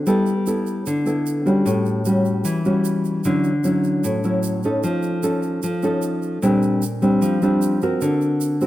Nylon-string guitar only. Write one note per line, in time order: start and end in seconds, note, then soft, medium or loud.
0.07 0.84 G3 medium
0.07 0.32 B3 medium
0.07 0.32 E4 medium
0.07 0.33 A4 medium
0.47 1.03 B3 medium
0.47 1.03 E4 medium
0.47 1.03 A4 medium
0.87 1.64 D3 medium
1.06 1.42 B3 soft
1.06 1.43 E4 medium
1.06 1.43 A4 medium
1.46 2.02 G3 medium
1.46 2.02 C#4 medium
1.46 2.02 F#4 medium
1.66 2.43 A2 medium
2.06 2.62 G3 medium
2.06 2.62 C#4 soft
2.06 2.62 F#4 medium
2.45 3.22 E3 medium
2.65 3.21 G3 soft
2.65 3.22 C#4 medium
2.65 3.22 F#4 medium
3.25 4.02 D3 medium
3.25 3.50 F#3 medium
3.25 3.50 C#4 medium
3.25 3.51 E4 medium
3.64 4.21 F#3 medium
3.64 4.21 C#4 soft
3.64 4.21 E4 medium
4.04 4.82 A2 medium
4.24 4.61 F#3 soft
4.24 4.61 C#4 soft
4.24 4.61 E4 medium
4.64 5.20 C#4 medium
4.64 5.21 D#4 medium
4.64 5.21 A4 medium
4.84 5.61 F3 medium
5.23 5.63 C#4 medium
5.23 5.63 D#4 soft
5.23 5.63 A4 medium
5.63 6.41 F3 medium
5.83 6.39 C#4 soft
5.83 6.40 D#4 medium
5.83 6.40 A4 medium
6.42 7.20 A#2 medium
6.42 6.82 G3 medium
6.42 6.82 C4 medium
6.42 6.82 D4 medium
7.02 7.39 G3 medium
7.02 7.39 C4 medium
7.02 7.39 D4 medium
7.22 7.99 F3 medium
7.42 7.79 G3 medium
7.42 7.79 C4 medium
7.42 7.79 D4 medium
7.82 8.58 C4 medium
7.82 8.59 F#4 medium
7.82 8.59 A#4 medium
8.02 8.67 D3 medium
8.61 8.67 C4 medium
8.61 8.67 F#4 soft
8.61 8.67 A#4 medium